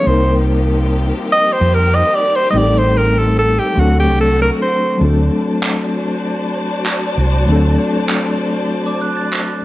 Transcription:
Already playing: string section D#3 F3
0.03 reed electric piano G3 A#3 C4, string section C4 G4
0.07 fingered electric bass C2, reed electric piano D#4 A#4, alto saxophone C5
1.32 alto saxophone D#5
1.52 alto saxophone C5
1.61 fingered electric bass F2
1.74 alto saxophone A#4
1.95 alto saxophone D#5
2.15 alto saxophone D5
2.36 alto saxophone C5
2.50 fingered electric bass A1, reed electric piano G3 A3 C4, string section A3, alto saxophone D#5
2.55 reed electric piano D#4 G4, alto saxophone D5
2.63 reed electric piano A4
2.78 alto saxophone C5
2.97 alto saxophone A#4
3.18 alto saxophone A4
3.39 alto saxophone A4
3.59 alto saxophone G4
3.74 fingered electric bass D2, reed electric piano F#3 A3 C4
3.78 string section D3 F#4, reed electric piano D4 A4, alto saxophone F#4
3.99 alto saxophone G4
4.08 fingered electric bass C2
4.20 alto saxophone A4
4.42 alto saxophone A#4
4.62 alto saxophone C5
4.98 fingered electric bass D2, reed electric piano F#3 A3 C4, string section F#4 C5 D5 A5
5.03 reed electric piano D4 A4
5.63 clap
6.86 clap
7.18 fingered electric bass C2
7.45 fingered electric bass D2, reed electric piano F#3 A3 C4
7.50 reed electric piano D4 A4
8.09 clap
8.86 glockenspiel D6
9.01 glockenspiel F#6
9.17 glockenspiel A6
9.33 clap

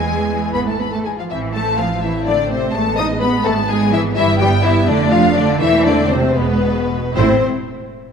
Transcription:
Already playing: double bass section E2, viola section E3 G#3, cello section G#3, violin section G#4 G#5
0.54 double bass section G#1, cello section B3, violin section B4 B5
0.66 cello section A3, violin section A4 A5
0.79 cello section B3, violin section B4 B5
0.91 cello section A3, violin section A4 A5
1.04 cello section G#3, violin section G#4 G#5
1.17 cello section F3, violin section F4 F5
1.29 double bass section A1, viola section E3 C4, cello section E3, violin section E4 E5
1.54 cello section A3, violin section A4 A5
1.79 cello section F3, violin section F4 F5
2.02 cello section E3, viola section A3 C4, violin section E4 E5
2.26 cello section D3, violin section D4 D5
2.50 cello section C3, violin section C4 C5
2.74 double bass section A1, viola section G#3 B3, cello section A3, violin section A4 A5
2.97 cello section D#4, violin section D#5 D#6
3.20 cello section B3, violin section B4 B5
3.44 double bass section G#1, cello section A3, violin section A4 A5
3.69 cello section G#3, violin section G#4 G#5
3.92 cello section E3, violin section E4 E5
4.16 double bass section G1, cello section E3, viola section G3 B3, violin section E4 E5
4.40 cello section G3, violin section G4 G5
4.63 cello section E3, violin section E4 E5
4.87 double bass section F1, cello section D3, viola section A3 D4, violin section D4 D5
5.11 cello section F3, violin section F4 F5
5.36 cello section D3, violin section D4 D5
5.60 double bass section E1, cello section E3, viola section A3 C4, violin section E4 E5
5.85 cello section D3, violin section D4 D5
6.10 cello section C3, violin section C4 C5
6.36 double bass section E1, cello section B2, viola section G#3 B3, violin section B3 B4
7.16 double bass section A1, viola section A3 E4, violin section C4 C5, cello section C4

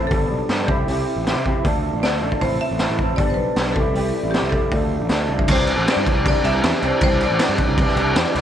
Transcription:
Already playing: marimba C5
0.07 picked electric bass G1, clean electric guitar G3, marimba A4, kick
0.11 clean electric guitar B3 D4 A4, open hi-hat
0.31 picked electric bass B1
0.49 picked electric bass G2, clean electric guitar G3 B3 D4 A4, snare, open hi-hat
0.66 picked electric bass C2, clean electric guitar C4 E4 G4, marimba G4, kick
0.87 picked electric bass C2, clean electric guitar C4 E4 G4, open hi-hat
1.16 picked electric bass A1
1.26 clean electric guitar C4 E4 G4, snare, open hi-hat
1.35 picked electric bass C3
1.46 clean electric guitar C4 E4 G4, kick
1.63 picked electric bass D2, clean electric guitar F3 A3 D4 A4, kick, open hi-hat
1.93 picked electric bass A1
2.03 picked electric bass D2, clean electric guitar F3 A3 D4 A4, marimba D5, snare, open hi-hat
2.21 picked electric bass A1, clean electric guitar F3 A3 D4 A4
2.32 kick
2.40 picked electric bass A1, clean electric guitar E3 C4 E4 A4, marimba C5, kick, open hi-hat
2.61 marimba E5
2.71 picked electric bass A1
2.79 clean electric guitar E3 C4 E4 A4, snare, open hi-hat
2.90 picked electric bass A1
2.99 clean electric guitar E3 C4 E4 A4, kick
3.16 picked electric bass G1, clean electric guitar G3 B3 D4, marimba D5, kick, open hi-hat
3.21 clean electric guitar A4
3.30 marimba C5
3.34 picked electric bass B1, marimba B4
3.56 picked electric bass B1, clean electric guitar G3 B3 D4 A4, snare, open hi-hat
3.73 picked electric bass C2, clean electric guitar G3, marimba A4, kick
3.77 clean electric guitar C4 E4 G4
3.94 picked electric bass C2, clean electric guitar G3 C4 E4 G4, open hi-hat
4.23 picked electric bass A1
4.31 clean electric guitar G3 C4, marimba G4, snare, open hi-hat
4.35 clean electric guitar E4 G4
4.42 picked electric bass C2
4.50 clean electric guitar G3 C4 E4, marimba A4, kick
4.54 clean electric guitar G4
4.72 picked electric bass D2, clean electric guitar F3 A3 D4, kick, open hi-hat
5.00 picked electric bass A1
5.09 picked electric bass D2, clean electric guitar F3 A3 D4, snare, open hi-hat
5.29 picked electric bass C2, clean electric guitar F3 A3 D4
5.39 kick
5.48 picked electric bass C2, clean electric guitar E3 C4, marimba C5, kick, crash
5.52 clean electric guitar D4 G4
5.67 clean electric guitar D4 G4, crash
5.73 clean electric guitar C4
5.77 picked electric bass A1
5.88 clean electric guitar E3 C4 D4, marimba D5, snare, crash
5.92 clean electric guitar G4
5.97 picked electric bass G2
6.06 clean electric guitar D4 G4, kick, crash
6.10 clean electric guitar C4
6.15 picked electric bass C2
6.26 clean electric guitar E3 C4 D4, marimba D5, kick, crash
6.30 clean electric guitar G4
6.44 picked electric bass C2, clean electric guitar C4 D4 G4, marimba E5, crash
6.48 clean electric guitar E3
6.64 picked electric bass E2, clean electric guitar E3 C4 D4 G4, snare, crash
6.82 picked electric bass C2, clean electric guitar C4 D4 G4, marimba C5, crash
7.01 picked electric bass C2, clean electric guitar E3 C4, marimba C5, kick, crash
7.05 clean electric guitar D4 G4
7.20 clean electric guitar D4 G4, marimba D5, crash
7.26 clean electric guitar C4
7.30 picked electric bass A1
7.39 clean electric guitar E3 C4 D4 G4, snare, crash
7.49 picked electric bass G2
7.58 clean electric guitar D4 G4, kick, crash
7.63 clean electric guitar C4
7.68 picked electric bass C2
7.76 clean electric guitar E3 C4 D4, kick, crash
7.80 clean electric guitar G4
7.88 snare
7.95 picked electric bass C2, clean electric guitar E3 C4 D4 G4, crash
8.15 picked electric bass E2, clean electric guitar E3 C4 D4 G4, snare, crash
8.33 picked electric bass C2, clean electric guitar C4 D4 G4, snare, crash

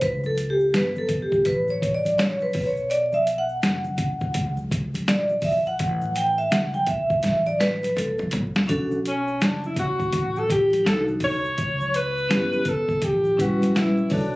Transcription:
0.01 upright bass C#2, vibraphone B4, kick, closed hi-hat, shaker
0.24 vibraphone A4, high conga, shaker
0.38 closed hi-hat, shaker
0.50 vibraphone G4
0.60 shaker
0.74 upright bass G1, vibraphone B4, snare, closed hi-hat, shaker
0.96 vibraphone A4, high conga, shaker
1.09 kick, closed hi-hat, low conga, shaker
1.22 vibraphone G4
1.32 kick, shaker
1.45 upright bass A1, vibraphone B4, kick, closed hi-hat, shaker
1.68 vibraphone C#5, high conga, shaker
1.82 kick, closed hi-hat, shaker
1.95 vibraphone D5
2.05 closed hi-hat, high conga, shaker
2.18 upright bass A#1, vibraphone C#5, snare, closed hi-hat, shaker
2.40 vibraphone B4, high conga, shaker
2.53 upright bass B1, kick, open hi-hat, low conga, shaker
2.66 vibraphone C#5
2.77 shaker
2.90 vibraphone D5, closed hi-hat, shaker
3.12 vibraphone E5, high conga, shaker
3.27 closed hi-hat, shaker
3.38 vibraphone F#5
3.49 shaker
3.62 upright bass F#1, snare, closed hi-hat, shaker
3.84 high conga, shaker
3.98 kick, closed hi-hat, low conga, shaker
4.21 kick, shaker
4.34 upright bass C#2, kick, closed hi-hat, shaker
4.57 high conga, shaker
4.71 kick, closed hi-hat, shaker
4.94 closed hi-hat, high conga, shaker
5.07 upright bass A#1, vibraphone D5, snare, closed hi-hat, shaker
5.29 high conga, shaker
5.42 vibraphone E5, kick, open hi-hat, low conga, shaker
5.66 vibraphone F#5, shaker
5.79 upright bass A1, kick, closed hi-hat, shaker
6.02 high conga, shaker
6.16 vibraphone G5, closed hi-hat, shaker
6.38 vibraphone E5, shaker
6.51 upright bass C#2, vibraphone F#5, snare, closed hi-hat, low conga, shaker
6.74 vibraphone G5, high conga, shaker
6.86 upright bass B1, vibraphone E5, kick, closed hi-hat, low conga, shaker
7.10 kick, shaker
7.23 upright bass A1, kick, snare, closed hi-hat, shaker
7.46 vibraphone D5, high conga, shaker
7.60 vibraphone B4, snare, closed hi-hat, shaker
7.83 closed hi-hat, high conga, shaker
7.96 upright bass A#1, vibraphone A4, closed hi-hat, mid tom, shaker
8.18 mid tom, high conga, shaker
8.31 closed hi-hat, floor tom, low conga, shaker
8.55 snare, shaker
8.67 upright bass B1, vibraphone C#4 D4 F#4 A4, kick, closed hi-hat, shaker
8.91 high conga, shaker
9.05 alto saxophone C#4, closed hi-hat, shaker
9.28 shaker
9.41 upright bass F#1, alto saxophone D4, snare, closed hi-hat, shaker
9.64 alto saxophone E4, high conga, shaker
9.76 alto saxophone F#4, kick, closed hi-hat, low conga, shaker
10.00 kick, shaker
10.12 upright bass A1, kick, closed hi-hat, shaker
10.36 alto saxophone A4, high conga, shaker
10.50 alto saxophone G4, kick, closed hi-hat, shaker
10.73 closed hi-hat, high conga, shaker
10.84 upright bass C2, vibraphone D4 D#4 F#4 A4, alto saxophone A4, snare, closed hi-hat, shaker
11.08 high conga, shaker
11.20 alto saxophone C#5, kick, open hi-hat, low conga, shaker
11.44 shaker
11.58 upright bass C#2, kick, closed hi-hat, shaker
11.81 high conga, shaker
11.94 alto saxophone B4, closed hi-hat, shaker
12.17 shaker
12.29 upright bass G1, vibraphone C#4 E4 G4 B4, snare, closed hi-hat, shaker
12.53 high conga, shaker
12.65 alto saxophone A4, kick, closed hi-hat, low conga, shaker
12.89 kick, shaker
13.02 upright bass A1, alto saxophone G4, kick, closed hi-hat, shaker
13.25 high conga, shaker
13.37 vibraphone G3 C#4 E4 B4, kick, closed hi-hat, shaker
13.41 alto saxophone F#4
13.62 closed hi-hat, high conga, shaker
13.75 upright bass A#1, alto saxophone E4, snare, closed hi-hat, shaker
13.97 high conga, shaker
14.10 upright bass B1, vibraphone D4 F#4 A4 C#5, alto saxophone D4, kick, open hi-hat, low conga, shaker

